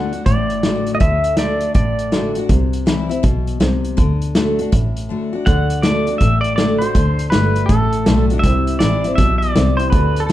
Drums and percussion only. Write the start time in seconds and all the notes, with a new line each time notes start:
0.13 closed hi-hat
0.26 kick, closed hi-hat
0.50 closed hi-hat
0.63 snare, closed hi-hat
0.87 closed hi-hat
1.00 kick, closed hi-hat
1.24 closed hi-hat
1.37 snare, closed hi-hat
1.61 closed hi-hat
1.75 kick, closed hi-hat
1.99 closed hi-hat
2.12 snare, closed hi-hat
2.35 closed hi-hat
2.49 kick, closed hi-hat
2.73 closed hi-hat
2.87 snare, closed hi-hat
3.11 closed hi-hat
3.24 kick, closed hi-hat
3.47 closed hi-hat
3.61 snare, closed hi-hat
3.85 closed hi-hat
3.97 kick, closed hi-hat
4.22 closed hi-hat
4.35 snare, closed hi-hat
4.59 closed hi-hat
4.72 kick, closed hi-hat
4.97 closed hi-hat
5.47 kick, closed hi-hat
5.70 closed hi-hat
5.83 snare, closed hi-hat
6.07 closed hi-hat
6.21 kick, closed hi-hat
6.44 closed hi-hat
6.58 snare, closed hi-hat
6.82 closed hi-hat
6.95 kick, closed hi-hat
7.19 closed hi-hat
7.32 snare, closed hi-hat
7.56 closed hi-hat
7.69 kick, closed hi-hat
7.93 closed hi-hat
8.06 snare, closed hi-hat
8.30 closed hi-hat
8.44 kick, closed hi-hat
8.67 closed hi-hat
8.80 snare, closed hi-hat
9.04 closed hi-hat
9.18 kick, closed hi-hat
9.42 closed hi-hat
9.56 snare, closed hi-hat
9.79 closed hi-hat
9.93 kick, closed hi-hat
10.16 closed hi-hat